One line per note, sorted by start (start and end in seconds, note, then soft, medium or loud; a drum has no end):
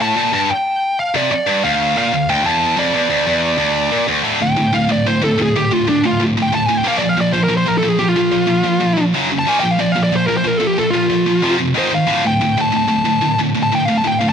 0.00 0.15 A2 loud
0.00 0.33 A5 loud
0.16 0.32 A#2 loud
0.32 0.48 G2 loud
0.32 0.50 A5 loud
0.51 1.00 G5 loud
0.99 1.15 F5 loud
1.14 1.30 C3 loud
1.14 1.31 D5 medium
1.31 1.64 D5 medium
1.31 muted distorted electric guitar stroke medium
1.47 1.63 G2 loud
1.64 1.96 D2 loud
1.64 1.97 F5 medium
1.97 2.12 A#2 loud
1.97 2.27 F5 loud
2.14 2.26 D2 medium
2.29 2.44 D2 loud
2.29 2.46 G5 loud
2.44 2.77 E2 loud
2.44 2.79 A5 loud
2.77 2.93 F2 loud
2.77 4.05 D5 medium
2.94 3.09 E2 loud
3.10 3.26 D2 loud
3.27 3.57 E2 loud
3.58 3.91 D2 loud
3.92 4.08 A#2 loud
4.08 4.22 D2 loud
4.23 4.39 D2 loud
4.23 4.39 A2 medium
4.23 4.40 D3 loud
4.41 4.55 D2 medium
4.41 4.55 A2 medium
4.41 4.73 G5 loud
4.56 4.71 D2 medium
4.56 4.72 A2 medium
4.73 4.88 D2 medium
4.73 4.88 A2 medium
4.73 4.90 F5 medium
4.89 5.04 D2 medium
4.89 5.04 A2 medium
4.89 5.07 D5 medium
5.06 5.21 D2 medium
5.06 5.21 A2 medium
5.06 5.22 C5 loud
5.22 5.37 D2 medium
5.22 5.37 A2 loud
5.22 5.39 A4 medium
5.38 5.53 D2 medium
5.38 5.53 A2 loud
5.42 5.56 G#4 medium
5.56 5.70 D2 medium
5.56 5.70 A2 medium
5.56 5.73 G4 medium
5.71 5.86 D2 medium
5.71 5.86 A2 medium
5.71 5.88 F4 loud
5.87 6.02 D2 medium
5.87 6.02 A2 medium
5.87 6.06 D4 loud
6.04 6.18 D2 medium
6.04 6.19 A2 medium
6.04 6.21 F4 loud
6.19 6.35 D2 medium
6.19 6.35 A2 medium
6.37 6.51 D2 medium
6.37 6.52 A2 medium
6.43 6.53 G5 loud
6.52 6.67 D2 medium
6.52 6.68 A2 loud
6.52 6.66 A5 medium
6.66 6.84 D2 medium
6.66 6.84 A2 medium
6.66 6.78 G#5 medium
6.78 6.87 G5 medium
6.84 6.99 A#2 loud
6.84 7.01 F3 medium
6.84 7.01 A#3 loud
6.84 6.97 F5 medium
6.98 7.16 A#2 medium
6.98 7.16 F3 loud
6.98 7.09 D5 medium
7.09 7.19 F5 loud
7.17 7.33 A#2 medium
7.17 7.32 F3 medium
7.17 7.30 D5 loud
7.32 7.47 A#2 medium
7.32 7.48 F3 medium
7.32 7.41 C5 medium
7.44 7.53 A#4 medium
7.48 7.64 A#2 medium
7.48 7.65 F3 medium
7.57 7.68 C5 medium
7.66 7.81 A#2 medium
7.66 7.81 F3 medium
7.66 7.75 A#4 medium
7.78 7.89 A4 medium
7.83 7.98 A#2 medium
7.83 7.98 F3 medium
7.89 7.97 G#4 loud
7.99 8.14 A#2 medium
7.99 8.14 F3 medium
7.99 8.09 G4 medium
8.09 9.02 F4 loud
8.16 8.30 A#2 medium
8.16 8.30 F3 medium
8.31 8.46 A#2 medium
8.31 8.46 F3 medium
8.47 8.63 A#2 medium
8.47 8.63 F3 medium
8.64 8.79 A#2 medium
8.64 8.79 F3 medium
8.80 8.96 A#2 medium
8.80 8.96 F3 medium
8.97 9.12 A#2 medium
8.97 9.13 F3 medium
9.14 9.29 F#2 medium
9.14 9.30 C#3 loud
9.14 9.30 F#3 loud
9.31 9.45 F#2 medium
9.31 9.45 C#3 medium
9.39 9.49 A5 medium
9.47 9.61 A#2 medium
9.47 9.61 F3 medium
9.47 9.63 A#3 medium
9.47 9.58 G#5 loud
9.60 9.78 A#2 medium
9.60 9.78 F3 medium
9.60 9.71 G5 medium
9.71 9.80 F5 loud
9.79 9.94 A#2 medium
9.79 9.94 F3 medium
9.79 9.92 D5 loud
9.92 10.11 A#2 medium
9.92 10.02 F5 medium
9.96 10.11 F3 medium
10.04 10.13 D5 medium
10.12 10.27 A#2 medium
10.12 10.27 F3 medium
10.16 10.25 C5 loud
10.27 10.43 A#2 medium
10.27 10.43 F3 medium
10.27 10.36 A#4 medium
10.37 10.47 C5 loud
10.44 10.59 A#2 medium
10.44 10.59 F3 medium
10.44 10.58 A#4 loud
10.58 10.75 A#2 medium
10.58 10.76 F3 medium
10.58 10.67 A4 medium
10.67 10.77 G4 medium
10.78 10.93 A#2 medium
10.78 10.93 F3 medium
10.78 10.89 A4 medium
10.90 11.08 A#2 medium
10.90 11.09 F3 medium
10.90 11.53 F4 loud
11.10 11.25 A#2 medium
11.10 11.25 F3 medium
11.26 11.41 A#2 medium
11.26 11.42 F3 medium
11.42 11.57 F2 medium
11.42 11.58 C3 loud
11.42 11.59 F3 loud
11.58 11.74 F2 medium
11.58 11.74 C3 medium
11.74 11.90 G#2 loud
11.74 11.91 D#3 loud
11.74 11.91 G#3 loud
11.74 11.93 C5 loud
11.91 12.06 G#2 medium
11.91 12.07 D#3 medium
11.91 12.25 F5 medium
12.07 12.23 D2 medium
12.07 12.23 A2 loud
12.07 12.24 D3 medium
12.25 12.40 D2 medium
12.25 12.40 A2 medium
12.25 12.58 G5 medium
12.41 12.56 D2 medium
12.41 12.56 A2 medium
12.57 12.71 D2 medium
12.57 12.71 A2 medium
12.57 12.75 A5 loud
12.72 12.87 D2 medium
12.72 12.87 A2 medium
12.77 13.39 A5 loud
12.88 13.04 D2 medium
12.88 13.04 A2 medium
13.05 13.21 D2 medium
13.05 13.21 A2 medium
13.22 13.38 D2 medium
13.22 13.37 A2 loud
13.39 13.54 D2 medium
13.39 13.54 A2 medium
13.55 13.71 D2 medium
13.55 13.71 A2 loud
13.63 13.73 A5 loud
13.72 13.87 D2 medium
13.72 13.88 A2 medium
13.72 13.85 G5 loud
13.85 14.03 D2 medium
13.85 14.03 A2 medium
13.85 13.95 F5 medium
13.97 14.07 A5 loud
14.04 14.19 D2 medium
14.04 14.20 A2 medium
14.04 14.19 G5 loud
14.19 14.33 D2 medium
14.19 14.33 A2 medium
14.19 14.28 F5 medium
14.29 14.33 A5 loud